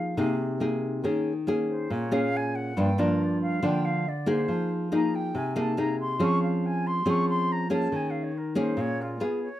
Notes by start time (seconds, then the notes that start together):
Already playing: F3 A#3 D#4 G#4 F5
0.17 C3 A#3 D#4 G#4
0.60 A#3 D#4 G#4
1.04 D#3 A#3 C#4 G#4
1.47 A#3 C#4 G#4
1.69 C5
1.90 A#2 C#5
2.11 A#3 C#4 G#4 F5
2.37 G#5
2.56 F#5
2.77 G2 F3 A#3 D4 G5
2.98 F3 A#3 D4 A#4
3.23 D5
3.42 F5
3.63 D3 F3 A#3 D4 G5
3.85 F5
4.09 D5
4.26 A#3 D#4 G#4 C5
4.48 F3
4.92 A#3 D#4 G#4 A#5
5.15 G5
5.35 C3 G#5
5.56 A#3 D#4 G#4 A5
5.77 A#3 D#4 G#4 A#5
6.00 C6
6.19 F3 C4 C#4 G#4
6.23 C#6
6.43 F5
6.66 G#5
6.87 C6
7.06 F3 C4 C#4 G#4
7.10 C#6
7.29 C6
7.52 A#5
7.70 A#3 C#4 G#4 A5
7.92 D#3 G#5
8.10 F5
8.24 C#5
8.38 A#4
8.55 A#3 C#4 G#4 C5
8.77 A#2
8.81 C#5
9.02 F4
9.20 B3 F4 G#4
9.43 C#5